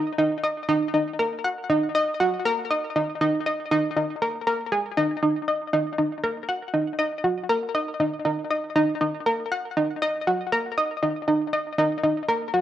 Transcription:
synth arpeggio sound
Already playing: D#4
0.18 D#4
0.44 D#5
0.69 D#4
0.94 D#4
1.19 A#4
1.44 F#5
1.70 D#4
1.95 D#5
2.20 F#4
2.45 A#4
2.71 D#5
2.96 D#4
3.21 D#4
3.46 D#5
3.71 D#4
3.97 D#4
4.22 A#4
4.47 A#4
4.72 G#4
4.97 D#4
5.23 D#4
5.48 D#5
5.73 D#4
5.98 D#4
6.23 A#4
6.49 F#5
6.74 D#4
6.99 D#5
7.24 F#4
7.50 A#4
7.75 D#5
8.00 D#4
8.25 D#4
8.51 D#5
8.76 D#4
9.01 D#4
9.26 A#4
9.51 F#5
9.77 D#4
10.02 D#5
10.27 F#4
10.52 A#4
10.78 D#5
11.03 D#4
11.28 D#4
11.53 D#5
11.78 D#4
12.03 D#4
12.29 A#4
12.54 F#4

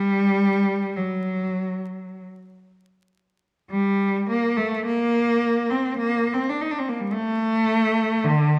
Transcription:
cello
Already playing: G3
0.96 F#3
3.71 G3
4.29 A#3
4.57 A3
4.85 A#3
5.70 C4
5.98 A#3
6.34 C4
6.49 D4
6.61 D#4
6.71 D4
6.79 C4
6.88 A#3
7.00 G3
7.12 A3
8.24 D3

